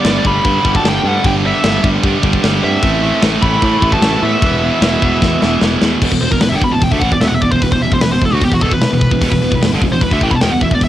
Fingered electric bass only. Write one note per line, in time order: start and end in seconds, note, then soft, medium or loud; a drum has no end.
0.05 0.18 G1 loud
0.25 0.38 G1 medium
0.45 0.58 G2 loud
0.65 0.78 G1 loud
0.84 0.98 G1 medium
1.04 1.17 G2 loud
1.24 1.51 G1 loud
1.64 1.77 G1 medium
1.84 1.97 G1 medium
2.03 2.17 G2 loud
2.23 2.37 G1 medium
2.44 2.57 G1 loud
2.63 2.77 G2 loud
2.83 3.10 A1 medium
3.23 3.36 A1 medium
3.42 3.56 A1 loud
3.62 3.76 A2 loud
3.82 3.96 A1 loud
4.02 4.16 A1 medium
4.22 4.36 A2 loud
4.42 4.69 E1 medium
4.82 4.95 E1 medium
5.02 5.16 E1 medium
5.22 5.36 E2 loud
5.42 5.56 E1 medium
5.62 5.75 E1 loud
5.82 5.95 E2 medium
6.02 6.11 E1 medium
6.12 6.21 E1 medium
6.22 6.31 E1 medium
6.32 6.40 E1 medium
6.41 6.51 E1 medium
6.52 6.61 G1 loud
6.61 6.71 E1 medium
6.71 6.81 E1 medium
6.82 6.91 E1 medium
6.91 7.01 D2 medium
7.02 7.11 A1 loud
7.11 7.21 E1 medium
7.22 7.31 E1 loud
7.32 7.41 E1 medium
7.42 7.51 E1 medium
7.52 7.61 E1 medium
7.62 7.71 E1 medium
7.71 7.80 E1 medium
7.81 7.91 E1 medium
7.92 8.00 E1 medium
8.01 8.10 E1 medium
8.11 8.21 E1 medium
8.21 8.30 E1 medium
8.31 8.40 D2 medium
8.41 8.51 E1 medium
8.52 8.61 E1 medium
8.62 8.71 E1 medium
8.71 8.81 E1 medium
8.83 muted fingered electric bass stroke soft
8.93 9.11 E1 medium
9.11 9.21 E1 medium
9.21 9.31 E1 medium
9.32 9.41 E1 medium
9.44 9.51 E1 medium
9.52 9.61 E1 medium
9.62 9.71 E1 medium
9.73 9.81 G1 loud
9.81 9.91 E1 medium
9.93 10.01 E1 medium
10.01 10.11 E1 medium
10.11 10.21 D2 loud
10.21 10.31 A1 loud
10.31 10.41 E1 medium
10.42 10.52 E1 medium
10.54 10.61 E1 medium
10.61 10.70 E1 medium
10.71 10.81 E1 medium
10.81 10.88 E1 medium